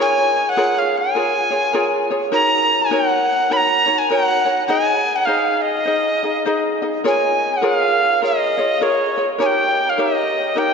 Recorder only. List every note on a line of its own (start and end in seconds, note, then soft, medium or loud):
0.01 0.50 G#5 loud
0.49 0.80 F#5 medium
0.79 0.99 F5 medium
0.98 2.10 G#5 loud
2.33 2.83 A#5 loud
2.82 2.94 G#5 loud
2.92 3.54 F#5 loud
3.52 3.58 B5 loud
3.57 4.00 A#5 loud
3.98 4.11 G#5 loud
4.10 4.67 F#5 loud
4.68 5.17 G#5 loud
5.16 5.27 F#5 medium
5.25 5.63 F5 medium
5.62 6.81 D#5 loud
7.07 7.55 G#5 medium
7.54 7.67 F#5 medium
7.65 8.23 F5 medium
8.24 8.84 D#5 medium
8.83 9.29 C#5 medium
9.41 9.47 G#5 medium
9.46 9.91 G5 loud
9.89 10.01 F5 medium
10.00 10.60 D#5 medium
10.58 10.74 G5 loud